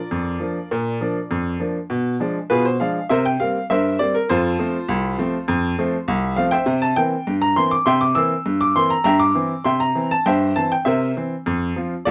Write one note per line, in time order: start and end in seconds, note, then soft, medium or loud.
0.00 1.57 F4 medium
0.00 1.57 A#4 medium
0.00 1.56 D5 medium
0.11 0.36 F2 medium
0.40 0.57 F3 medium
0.40 0.57 A#3 soft
0.40 0.57 D4 medium
0.71 0.96 A#2 medium
1.01 1.17 F3 medium
1.01 1.17 A#3 medium
1.01 1.18 D4 medium
1.31 1.56 F2 medium
1.60 1.76 F3 medium
1.60 1.77 A#3 medium
1.60 1.77 D4 medium
1.90 2.15 B2 medium
2.20 2.36 F3 medium
2.20 2.37 G#3 medium
2.20 2.37 D4 medium
2.50 2.75 B2 medium
2.50 2.64 F4 medium
2.50 2.64 G#4 medium
2.50 2.65 B4 loud
2.65 2.80 C5 medium
2.80 2.97 F3 medium
2.80 2.97 G#3 medium
2.80 2.97 D4 medium
2.80 3.04 F5 medium
3.09 3.35 C3 loud
3.09 3.24 A#4 medium
3.09 3.24 C5 medium
3.09 3.24 E5 loud
3.25 3.40 G5 loud
3.40 3.56 G3 medium
3.40 3.56 A#3 medium
3.40 3.57 C4 medium
3.40 3.63 F5 loud
3.70 3.95 G2 medium
3.70 3.98 A#4 medium
3.70 3.98 C5 medium
3.70 3.98 E5 loud
3.99 4.16 G3 medium
3.99 4.16 A#3 medium
3.99 4.17 C4 medium
3.99 4.14 D5 loud
4.14 4.29 A#4 loud
4.29 4.55 F2 loud
4.29 6.35 F4 medium
4.29 6.34 A4 medium
4.29 6.34 C5 loud
4.59 4.75 F3 medium
4.59 4.75 A3 medium
4.59 4.76 C4 medium
4.88 5.14 C2 loud
5.18 5.34 F3 medium
5.18 5.35 A3 medium
5.18 5.35 C4 medium
5.48 5.73 F2 loud
5.78 5.95 F3 medium
5.78 5.95 A3 medium
5.78 5.95 C4 medium
6.08 6.33 C2 loud
6.36 6.54 F3 medium
6.36 6.54 A3 medium
6.36 6.54 C4 medium
6.36 6.52 F5 loud
6.51 6.80 C5 medium
6.51 6.80 E5 medium
6.51 6.80 G5 loud
6.66 6.92 C3 loud
6.82 6.97 A5 loud
6.96 7.13 E3 medium
6.96 7.14 A#3 medium
6.96 7.14 C4 medium
6.96 7.33 G5 loud
7.27 7.53 G2 medium
7.42 7.57 A#5 loud
7.56 7.73 E3 medium
7.56 7.74 A#3 medium
7.56 7.74 C4 medium
7.56 7.72 C6 loud
7.71 7.87 D6 loud
7.86 8.12 C3 loud
7.86 8.01 E5 loud
7.86 8.01 G5 loud
7.86 8.01 C6 loud
8.01 8.16 D6 loud
8.15 8.33 E3 medium
8.15 8.33 A#3 medium
8.15 8.33 C4 medium
8.15 8.59 E6 loud
8.46 8.72 G2 loud
8.61 8.76 D6 loud
8.75 8.92 E3 medium
8.75 8.93 A#3 medium
8.75 8.93 C4 medium
8.75 8.91 C6 loud
8.90 9.03 A#5 loud
9.04 9.31 G2 loud
9.04 9.20 E5 loud
9.04 9.20 G5 medium
9.04 9.20 A#5 loud
9.19 9.63 D6 loud
9.35 9.52 E3 medium
9.35 9.52 C4 medium
9.64 9.91 C3 medium
9.64 9.80 E5 medium
9.64 9.80 G5 medium
9.64 9.80 C6 loud
9.80 10.09 A#5 loud
9.95 10.12 E3 medium
9.95 10.12 C4 medium
10.11 10.26 A5 loud
10.26 10.52 G2 loud
10.26 10.55 C5 medium
10.26 10.55 E5 medium
10.26 10.55 G5 loud
10.56 10.73 E3 medium
10.56 10.73 C4 medium
10.56 10.71 A5 loud
10.72 10.86 G5 loud
10.85 11.12 C3 loud
10.85 11.14 A#4 medium
10.85 11.14 C5 medium
10.85 11.10 E5 loud
11.17 11.33 E3 medium
11.17 11.33 C4 medium
11.46 11.72 F2 loud
11.76 11.93 F3 medium
11.76 11.93 C4 medium
11.76 11.93 F4 medium
12.05 12.11 C2 medium
12.05 12.11 F4 medium
12.05 12.11 A4 medium
12.05 12.11 D5 loud